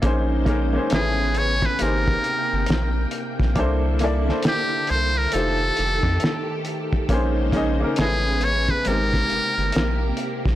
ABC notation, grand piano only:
X:1
M:4/4
L:1/16
Q:"Swing 16ths" 1/4=68
K:Bbdor
V:1 name="Grand piano"
[B,DEAc]2 [B,DEAB] [B,DEAc] [=A,^C=E^G=B]3 z [_B,_E=G_A=c]6- [B,EGAc] z | [B,=D=E=Ac]2 [B,DEA=d] [B,DEAc]4- [B,DEAc] [=A,_EFGc]6- [A,EFGc] z | [B,DEAc]2 [B,DEAe] [B,DEAB] [=A,^C=E^G=B]3 z [_A,=C_E=G_B]6- [A,CEGB] z |]